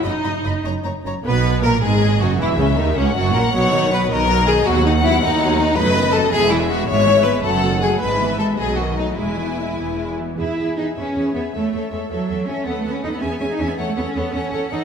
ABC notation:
X:1
M:6/8
L:1/16
Q:3/8=106
K:B
V:1 name="Violin section"
d6 z6 | z6 d6 | e6 f6- | f6 d6 |
f12 | [K:E] d6 e6 | e6 f6 | e6 d6 |
g8- g z3 | e2 e2 e2 e2 e2 e2 | e2 e2 e2 e2 e2 e2 | f2 f2 f2 g2 g2 g2 |
f2 f2 f2 f2 f2 f2 |]
V:2 name="Violin section"
[db]2 [db]2 [db]2 [ca]2 [ca]2 [ca]2 | B4 A2 G4 F2 | E2 C2 D2 C2 F2 A2 | c4 B2 A4 G2 |
F2 D2 E2 D6 | [K:E] B4 A2 G2 E2 F2 | c4 B2 A4 G2 | B4 A2 G2 F2 D2 |
E8- E2 z2 | B2 B2 B2 B2 B2 B2 | c2 c2 c2 c2 c2 c2 | B2 B2 B2 e2 e2 e2 |
c2 c2 c2 c2 c2 c2 |]
V:3 name="Viola section"
D6 z6 | B,4 A,2 G,4 F,2 | E,2 C,2 D,2 C,2 F,2 A,2 | [F,B,]2 [D,D]2 [F,B,]2 [D,D]2 [F,B,]2 [D,D]2 |
[F,B,]2 [D,D]2 [F,B,]2 [D,D]2 [F,B,]2 [D,D]2 | [K:E] [F,A,]2 [D,B,]2 [F,A,]2 [G,B,]2 [E,G,]2 [G,B,]2 | [G,B,]2 [E,G,]2 [G,B,]2 [F,A,]2 [D,F,]2 [F,A,]2 | G,2 [E,B,]2 G,2 [F,A,]2 [D,B,]2 [F,A,]2 |
G,2 [E,B,]2 G,2 [E,B,]2 G,2 [E,B,]2 | G2 G2 G2 G2 G2 G2 | A2 A2 A2 A2 A2 A2 | A2 A2 A2 G2 G2 G2 |
A2 A2 A2 A2 A2 A2 |]
V:4 name="Cello section" clef=bass
F,,2 F,,2 F,,2 F,,2 F,,2 F,,2 | B,,4 A,,2 G,,4 F,,2 | E,,2 C,,2 D,,2 C,,2 F,,2 A,,2 | B,,6 B,,6 |
D,,6 D,,6 | [K:E] F,,6 E,,6 | G,,6 F,,6 | G,,6 B,,6 |
E,,6 E,,6 | E4 D2 C4 B,2 | A,4 G,2 F,4 C2 | B, A, B, C D B, C B, C D C B, |
A, A, B, C B,2 C4 D2 |]
V:5 name="Double bass section" clef=bass
F,,,2 F,,,2 F,,,2 F,,,2 F,,,2 F,,,2 | B,,,4 A,,,2 G,,,4 F,,,2 | E,,,2 C,,2 D,,2 C,,2 F,,,2 A,,,2 | B,,,6 B,,,6 |
D,,6 D,,6 | [K:E] F,,,6 E,,,6 | G,,,6 F,,,6 | G,,,6 B,,,6 |
E,,,6 E,,,6 | E,,2 E,,2 E,,2 E,,2 E,,2 E,,2 | E,,2 E,,2 E,,2 E,,2 E,,2 E,,2 | D,,2 D,,2 D,,2 E,,2 E,,2 E,,2 |
E,,2 E,,2 E,,2 E,,2 E,,2 E,,2 |]